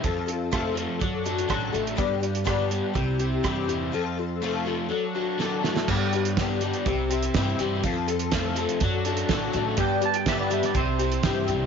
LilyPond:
<<
  \new Staff \with { instrumentName = "Electric slide guitar" } { \time 4/4 \key g \mixolydian \tempo 4 = 123 r1 | r1 | r1 | r1 |
r1 | g''8 a''16 g''16 e''16 d''16 e''16 d''16 c''2 | }
  \new Staff \with { instrumentName = "Twelve-string acoustic guitar" } { \time 4/4 \key g \mixolydian <f c' f' a'>8 <c' f' a'>8 <f c' f' a'>8 <c' f' a'>8 <fis d' fis' a'>8 <d' fis' a'>8 <fis d' fis' a'>8 <d' fis' a'>8 | <g, d g b d' g'>8 <g b d' g'>8 <g, d g b d' g'>8 <g b d' g'>8 <g c' e' g'>8 <c' e' g'>8 <c g c' e' g'>8 <c' e' g'>8 | <f c' f' a'>8 <c' f' a'>8 <f c' f' a'>8 <c' f' a'>8 <fis d' fis' a'>8 <d' fis' a'>8 <fis d' fis' a'>8 <d' fis' a'>8 | <g, d g b d' g'>8 <g b d' g'>8 <g, d g b d' g'>8 <g b d' g'>8 <g c' e' g'>8 <c' e' g'>8 <c g c' e' g'>8 <c' e' g'>8 |
<f c' f' a'>8 <c' f' a'>8 <f c' f' a'>8 <c' f' a'>8 <fis d' fis' a'>8 <d' fis' a'>8 <fis d' fis' a'>8 <d' fis' a'>8 | <g, d g b d' g'>8 <g b d' g'>8 <g, d g b d' g'>8 <g b d' g'>8 <g c' e' g'>8 <c' e' g'>8 <c g c' e' g'>8 <c' e' g'>8 | }
  \new Staff \with { instrumentName = "Overdriven electric guitar" } { \clef bass \time 4/4 \key g \mixolydian f,4 a8 f8 fis8 d'8 fis8 a8 | g,4 b8 g8 c8 c'8 e8 g8 | f,4 a8 f8 fis8 d'8 fis8 a8 | g,4 b8 g8 c8 c'8 e8 g8 |
f,4 a8 f8 fis8 d'8 fis8 a8 | g,4 b8 g8 c8 c'8 e8 g8 | }
  \new Staff \with { instrumentName = "Upright bass" } { \clef bass \time 4/4 \key g \mixolydian f,2 fis,4 a,,8 a,,8 | g,2 c,4 g,8 e,8 | r1 | g,2 c,4 g,8 g,8 |
f,2 fis,4 a,,8 a,,8 | g,2 c,4 g,8 c,8 | }
  \new DrumStaff \with { instrumentName = "Drums" } \drummode { \time 4/4 <hh bd>8 hh8 <hh bd ss>8 hh8 <hh bd>8 hh16 hh16 <hh bd ss>8 hh16 hh16 | <hh bd>8 hh16 hh16 <hh bd ss>8 hh8 <hh bd>8 hh8 <hh bd ss>8 hh8 | r4 r4 r4 sn8 sn16 sn16 | <cymc bd>8 hh16 hh16 <hh bd sn>8 hh16 hh16 <hh bd>8 hh16 hh16 <hh bd sn>8 hh8 |
<hh bd>8 hh16 hh16 <hh bd sn>8 hh16 hh16 <hh bd>8 hh16 hh16 <hh bd sn>8 hh8 | <hh bd>8 hh16 hh16 <hh bd sn>8 hh16 <hh sn>16 <hh bd>8 hh16 hh16 <hh bd sn>8 hh8 | }
>>